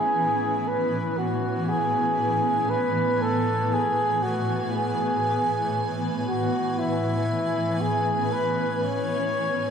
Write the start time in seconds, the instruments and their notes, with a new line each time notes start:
Already playing: ambient pad A2 E3 B3 C#4 B4 G#5, flugelhorn G#4
0.68 flugelhorn B4
1.18 flugelhorn F#4
1.69 flugelhorn G#4
2.70 flugelhorn B4
3.21 flugelhorn A4
3.73 flugelhorn G#4
4.23 flugelhorn F#4
4.73 flugelhorn G#4
6.28 flugelhorn F#4
6.79 flugelhorn E4
7.43 ambient pad C#4
7.81 flugelhorn G#4
8.32 flugelhorn B4
8.83 flugelhorn C#5